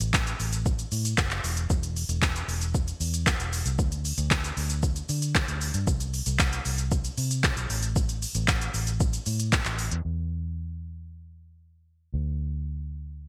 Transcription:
0.00 0.33 A1 loud
0.00 closed hi-hat medium
0.00 shaker medium
0.14 kick loud
0.14 snare medium
0.14 clap loud
0.14 shaker medium
0.27 closed hi-hat medium
0.27 shaker medium
0.40 0.83 A1 medium
0.40 open hi-hat medium
0.40 shaker medium
0.53 closed hi-hat medium
0.53 shaker medium
0.66 kick loud
0.66 shaker medium
0.79 closed hi-hat medium
0.79 shaker medium
0.92 1.13 A2 medium
0.92 open hi-hat medium
0.92 shaker medium
1.05 closed hi-hat medium
1.05 shaker medium
1.18 1.41 F#1 medium
1.18 kick loud
1.18 snare medium
1.18 clap loud
1.18 shaker medium
1.31 clap medium
1.31 closed hi-hat medium
1.31 shaker medium
1.44 1.67 E1 medium
1.44 open hi-hat medium
1.44 shaker medium
1.57 closed hi-hat medium
1.57 shaker medium
1.70 2.02 E1 loud
1.70 kick loud
1.70 shaker medium
1.83 closed hi-hat medium
1.83 shaker medium
1.96 open hi-hat medium
1.96 shaker medium
2.09 2.41 E1 loud
2.09 closed hi-hat medium
2.09 shaker medium
2.22 kick loud
2.22 snare medium
2.22 clap loud
2.22 shaker medium
2.36 closed hi-hat medium
2.36 shaker medium
2.48 2.91 E1 medium
2.48 open hi-hat medium
2.48 shaker medium
2.61 closed hi-hat medium
2.61 shaker medium
2.75 kick loud
2.75 shaker medium
2.88 closed hi-hat medium
2.88 shaker medium
3.00 3.33 E2 medium
3.00 open hi-hat medium
3.00 shaker medium
3.14 closed hi-hat medium
3.14 shaker medium
3.27 kick loud
3.27 snare medium
3.27 clap loud
3.27 shaker medium
3.39 3.61 E1 medium
3.39 closed hi-hat medium
3.39 shaker medium
3.53 open hi-hat medium
3.53 shaker medium
3.66 3.76 C2 medium
3.66 closed hi-hat medium
3.66 shaker medium
3.79 4.11 D2 loud
3.79 kick loud
3.79 shaker medium
3.92 closed hi-hat medium
3.92 shaker medium
4.05 open hi-hat medium
4.05 shaker medium
4.18 4.50 D2 loud
4.18 closed hi-hat medium
4.18 shaker medium
4.31 kick loud
4.31 snare medium
4.31 clap loud
4.31 shaker medium
4.44 closed hi-hat medium
4.44 shaker medium
4.57 5.00 D2 medium
4.57 open hi-hat medium
4.57 shaker medium
4.70 closed hi-hat medium
4.70 shaker medium
4.83 kick loud
4.83 shaker medium
4.96 closed hi-hat medium
4.96 shaker medium
5.09 5.41 D3 loud
5.09 open hi-hat medium
5.09 shaker medium
5.22 closed hi-hat medium
5.22 shaker medium
5.35 kick loud
5.35 snare medium
5.35 clap loud
5.35 shaker medium
5.48 5.70 D2 medium
5.48 closed hi-hat medium
5.48 shaker medium
5.61 open hi-hat medium
5.61 shaker medium
5.74 5.85 G2 medium
5.74 closed hi-hat medium
5.74 shaker medium
5.87 6.20 C2 loud
5.87 kick loud
5.87 shaker medium
6.00 closed hi-hat medium
6.00 shaker medium
6.14 open hi-hat medium
6.14 shaker medium
6.26 6.59 C2 loud
6.26 closed hi-hat medium
6.26 shaker medium
6.39 kick loud
6.39 snare medium
6.39 clap loud
6.39 shaker medium
6.53 closed hi-hat medium
6.53 shaker medium
6.65 7.09 C2 loud
6.65 open hi-hat medium
6.65 shaker medium
6.78 closed hi-hat medium
6.78 shaker medium
6.91 kick loud
6.91 shaker medium
7.05 closed hi-hat medium
7.05 shaker medium
7.18 7.50 C3 medium
7.18 open hi-hat medium
7.18 shaker medium
7.31 closed hi-hat medium
7.31 shaker medium
7.44 kick loud
7.44 snare medium
7.44 clap loud
7.44 shaker medium
7.57 7.68 B1 medium
7.57 closed hi-hat medium
7.57 shaker medium
7.70 8.24 A1 loud
7.70 open hi-hat medium
7.70 shaker medium
7.83 closed hi-hat medium
7.83 shaker medium
7.96 kick loud
7.96 shaker medium
8.09 closed hi-hat medium
8.09 shaker medium
8.22 open hi-hat medium
8.22 shaker medium
8.35 8.67 A1 loud
8.35 closed hi-hat medium
8.35 shaker medium
8.48 kick loud
8.48 snare medium
8.48 clap loud
8.48 shaker medium
8.61 closed hi-hat medium
8.61 shaker medium
8.74 9.17 A1 loud
8.74 open hi-hat medium
8.74 shaker medium
8.87 closed hi-hat medium
8.87 shaker medium
9.00 kick loud
9.00 shaker medium
9.13 closed hi-hat medium
9.13 shaker medium
9.26 9.59 A2 medium
9.26 open hi-hat medium
9.26 shaker medium
9.40 closed hi-hat medium
9.40 shaker medium
9.52 kick loud
9.52 snare medium
9.52 clap loud
9.52 shaker medium
9.65 9.87 A1 medium
9.65 clap medium
9.65 closed hi-hat medium
9.65 shaker medium
9.79 open hi-hat medium
9.79 shaker medium
9.91 10.02 E2 medium
9.91 closed hi-hat medium
9.91 shaker medium
10.05 12.10 E2 medium
12.14 13.28 D2 medium

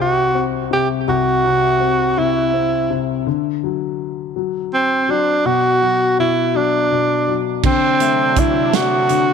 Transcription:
0.00 1.03 C2 medium
0.00 0.71 C3 soft
0.00 0.33 C4 soft
0.00 0.42 F#4 medium
0.35 1.76 C4 soft
0.71 1.43 C3 soft
0.71 0.89 G4 medium
1.08 3.22 C2 medium
1.08 2.20 F#4 medium
1.44 2.16 C3 soft
1.80 2.52 C4 soft
2.17 2.89 C3 soft
2.17 3.00 E4 medium
2.53 3.24 C4 soft
2.90 3.25 C3 soft
3.27 5.41 D3 medium
3.63 4.34 F#3 soft
4.36 5.07 F#3 soft
4.74 5.12 C4 medium
5.09 5.81 F#3 soft
5.09 5.48 D4 medium
5.45 6.17 B2 medium
5.45 6.18 F#4 loud
5.82 6.53 F#3 soft
6.19 6.90 B2 soft
6.19 6.58 E4 medium
6.55 7.26 F#3 soft
6.55 7.37 D4 medium
6.91 7.62 B2 soft
7.28 7.63 F#3 soft
7.63 9.33 C3 medium
7.63 8.35 D3 medium
7.63 9.33 F#3 medium
7.63 8.41 C4 medium
7.63 9.33 D4 medium
7.63 kick medium
7.63 crash medium
8.00 8.71 A3 soft
8.00 closed hi-hat soft
8.36 9.08 D3 soft
8.36 8.77 E4 medium
8.36 kick medium
8.36 closed hi-hat medium
8.73 9.33 A3 soft
8.73 9.33 F#4 medium
8.73 snare loud
8.73 closed hi-hat medium
9.09 9.33 D3 soft
9.09 closed hi-hat soft

